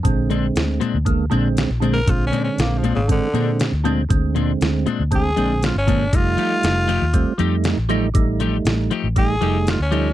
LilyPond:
<<
  \new Staff \with { instrumentName = "Tenor saxophone" } { \time 4/4 \key bes \mixolydian \tempo 4 = 118 r2. \tuplet 3/2 { r4 bes'8 } | \tuplet 3/2 { f'8 des'8 des'8 bes8 f8 des8 } d4 r4 | r2 aes'4 f'16 des'8. | f'2. r4 |
r2 aes'4 f'16 des'8. | }
  \new Staff \with { instrumentName = "Clean electric guitar" } { \time 4/4 \key bes \mixolydian r8 <bes, aes c' d'>8 r8 <bes, aes c' d'>8 r8 <bes, aes c' d'>8 r8 <bes, aes c' d'>8 | r8 <bes, aes c' d'>8 r8 <bes, aes c' d'>8 r8 <bes, aes c' d'>8 r8 <bes, aes c' d'>8 | r8 <bes, aes c' d'>8 r8 <bes, aes c' d'>8 r8 <bes, aes c' d'>8 r8 <bes, aes c' d'>8 | r8 <f a ees' g'>8 r8 <f a ees' g'>8 r8 <f a ees' g'>8 r8 <f a ees' g'>8 |
r8 <f a ees' g'>8 r8 <f a ees' g'>8 r8 <f a ees' g'>8 r8 <f a ees' g'>8 | }
  \new Staff \with { instrumentName = "Tonewheel organ" } { \clef bass \time 4/4 \key bes \mixolydian <d aes c'>4. r8 <d aes bes>8 <d aes c'>8. r16 <d aes c'>8 | <d aes c'>4. r8 <d aes c'>8 <d aes c'>8. r16 <d aes c'>8 | <d aes c'>4. r8 <d aes c'>8 <d aes c'>8. r16 <d aes bes>8 | <g a ees'>4. r8 <g a c'>8 <g a ees'>8. r16 <g a ees'>8 |
<g a ees'>4. r8 <g a ees'>8 <g a ees'>8. r16 <g a ees'>8 | }
  \new Staff \with { instrumentName = "Fingered electric bass" } { \clef bass \time 4/4 \key bes \mixolydian bes,,4 d,8 r16 d,8. bes,,8. bes,,8. | bes,,8 r8 bes,,8. aes,,8 r16 bes,8. d,8. | d,4 d,8 r16 d,8. bes,,8. g,,8. | f,,8 r8 f,,8. ees,8 r16 f,8. a,,8. |
a,,4 a,,8 r16 a,,8. f,,8. d,8. | }
  \new DrumStaff \with { instrumentName = "Drums" } \drummode { \time 4/4 <hh bd>8 hh8 <hh sn>8 hh8 <hh bd>8 hh8 <hh sn>8 hh8 | <hh bd>8 hh8 <hh sn>8 hh8 <hh bd>8 hh8 <hh sn>8 hh8 | <hh bd>8 hh8 <hh sn>8 hh8 <hh bd>8 hh8 <hh sn>8 <hh bd>8 | <hh bd>8 hh8 <hh sn>8 hh8 <hh bd>8 hh8 <hh sn>8 hh8 |
<hh bd>8 hh8 <hh sn>8 hh8 <hh bd>8 hh8 <hh sn>8 hh8 | }
>>